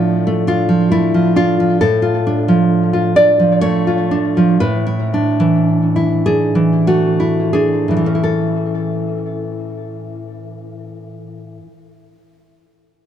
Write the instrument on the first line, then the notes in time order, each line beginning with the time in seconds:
nylon-string guitar
Already playing: A2 F3 D4 A4
0.27 A3
0.47 D4 F4
0.69 F3
0.92 A3 E4
1.14 F3
1.36 D4 F4
1.60 F3
1.81 A2 A4
2.02 F4
2.27 D4
2.48 F3
2.93 F4
3.16 D4 D5
3.39 F3
3.61 A3 C#5
3.87 F4
4.11 D4
4.37 F3
4.60 A2 B4
4.87 E4
5.14 D4
5.40 E3
5.96 E4
6.26 D4 G#4
6.55 E3
6.87 A3 F#4
7.20 E4
7.53 D4 G#4
7.88 A2 E3
7.97 E3
8.06 C#4
8.15 E4
8.24 A4